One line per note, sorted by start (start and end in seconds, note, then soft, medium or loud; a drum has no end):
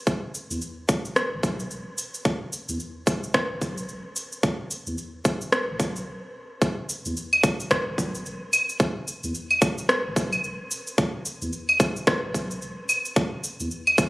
0.07 0.20 E1 medium
0.07 kick medium
0.07 shaker soft
0.35 shaker medium
0.50 0.60 E2 medium
0.50 shaker soft
0.61 shaker soft
0.89 1.34 E1 medium
0.89 kick loud
0.89 shaker medium
1.05 shaker soft
1.16 cross-stick medium
1.16 shaker soft
1.32 1.67 B1 medium
1.43 kick loud
1.43 shaker medium
1.60 shaker soft
1.71 1.84 E1 medium
1.71 shaker soft
1.98 shaker medium
2.14 shaker soft
2.25 2.38 E1 medium
2.25 kick medium
2.25 shaker soft
2.53 shaker medium
2.69 2.78 E2 medium
2.69 shaker soft
2.80 shaker soft
3.07 3.52 E1 medium
3.07 kick loud
3.07 shaker medium
3.23 shaker soft
3.34 kick medium
3.34 cross-stick medium
3.34 shaker soft
3.50 3.86 B1 medium
3.62 kick medium
3.62 shaker medium
3.78 shaker soft
3.89 4.02 E1 medium
3.89 shaker soft
4.16 shaker medium
4.32 shaker soft
4.43 4.57 E1 medium
4.43 kick loud
4.43 shaker soft
4.71 shaker medium
4.87 4.96 E2 medium
4.87 shaker soft
4.98 shaker soft
5.25 5.70 E1 medium
5.25 kick loud
5.25 shaker medium
5.41 shaker soft
5.52 cross-stick medium
5.52 shaker soft
5.68 6.04 B1 medium
5.80 kick loud
5.80 shaker medium
5.96 shaker soft
6.62 6.75 E1 medium
6.62 kick loud
6.62 shaker soft
6.89 shaker medium
7.05 7.14 E2 medium
7.05 shaker soft
7.17 shaker soft
7.33 claves medium
7.43 7.89 E1 medium
7.43 kick loud
7.43 shaker medium
7.60 shaker soft
7.71 kick loud
7.71 cross-stick medium
7.71 shaker soft
7.87 8.22 B1 medium
7.98 kick medium
7.98 shaker medium
8.15 shaker soft
8.26 8.39 E1 medium
8.26 shaker soft
8.53 claves medium
8.53 shaker medium
8.69 shaker soft
8.80 8.93 E1 loud
8.80 kick loud
8.80 shaker soft
9.08 shaker medium
9.23 9.33 E2 medium
9.23 shaker soft
9.35 shaker soft
9.51 claves medium
9.62 10.07 E1 medium
9.62 kick loud
9.62 shaker medium
9.78 shaker soft
9.89 cross-stick medium
9.89 shaker soft
10.05 10.40 B1 medium
10.16 kick loud
10.16 shaker medium
10.33 claves medium
10.33 shaker soft
10.44 10.57 E1 medium
10.44 shaker soft
10.71 shaker medium
10.87 shaker soft
10.98 11.11 E1 loud
10.98 kick loud
10.98 shaker soft
11.25 shaker medium
11.42 11.51 E2 medium
11.42 shaker soft
11.53 shaker soft
11.69 claves medium
11.80 12.25 E1 medium
11.80 kick loud
11.80 shaker medium
11.96 shaker soft
12.07 kick loud
12.07 cross-stick medium
12.07 shaker soft
12.24 12.59 B1 medium
12.34 kick medium
12.34 shaker medium
12.51 shaker soft
12.62 12.75 E1 medium
12.62 shaker soft
12.89 claves medium
12.89 shaker medium
13.05 shaker soft
13.16 13.30 E1 loud
13.16 kick loud
13.16 shaker soft
13.44 shaker medium
13.60 13.69 E2 medium
13.60 shaker soft
13.71 shaker soft
13.87 claves medium
13.98 14.09 E1 medium
13.98 kick loud
13.98 shaker medium